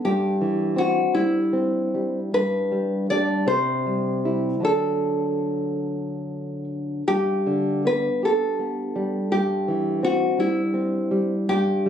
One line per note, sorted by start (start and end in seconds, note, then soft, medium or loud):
0.05 2.31 G2 soft
0.05 0.74 G4 soft
0.41 1.00 E3 soft
0.76 1.37 C4 soft
0.76 1.13 F#4 medium
1.14 1.78 G3 soft
1.14 2.31 E4 medium
1.53 2.19 C4 soft
1.94 2.35 G3 soft
2.34 3.44 G2 medium
2.34 3.06 B4 medium
2.72 3.10 G3 soft
3.10 3.44 G3 soft
3.10 3.45 D4 soft
3.10 3.45 D5 medium
3.47 4.60 C3 medium
3.47 4.62 C5 medium
3.86 4.24 G3 soft
4.25 4.62 G3 soft
4.25 4.61 E4 soft
4.60 7.02 D3 soft
4.60 7.03 F#3 soft
4.60 7.04 D4 soft
4.65 6.64 A4 soft
7.08 9.28 G2 soft
7.08 7.82 G4 medium
7.47 8.08 D3 soft
7.85 8.45 B3 soft
7.85 8.21 B4 medium
8.23 8.82 G4 soft
8.23 9.29 A4 medium
8.59 9.18 B3 soft
8.96 9.32 G3 soft
9.32 11.46 G2 soft
9.32 10.00 G4 medium
9.68 10.26 E3 soft
10.03 10.61 C4 soft
10.03 10.38 F#4 medium
10.39 10.97 G3 soft
10.39 11.46 E4 medium
10.74 11.34 C4 soft
11.11 11.49 G3 soft
11.49 11.89 G2 medium
11.49 11.89 G4 medium
11.86 11.89 G3 soft